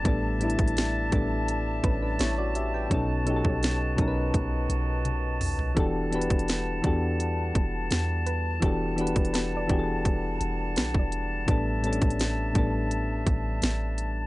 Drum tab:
HH |x---xxxxx---x---x---x---x---x---|x---x---x---x---x---x---x---o---|x---xxxxx---x---x---x---x---x---|x---xxxxx---x---x---x---x---x---|
SD |--------o---------------o-------|--------o-----------------------|--------o---------------o-------|--------o---------------o-------|
T1 |--------------------------------|------------------------o-------|--------------------------------|--------------------------------|
T2 |--------------------------------|----------------------------o---|--------------------------------|--------------------------------|
FT |--------------------------------|------------------------------o-|--------------------------------|--------------------------------|
BD |o-----o-----o-------o-----------|o-----o-----o---o---------------|o-----o-----o-------o-----------|o-----o-----o---o---------o-----|

HH |x---xxxxx---x---x---x---x---x---|
SD |--------o---------------o-------|
T1 |--------------------------------|
T2 |--------------------------------|
FT |--------------------------------|
BD |o-----o-----o-------o-----------|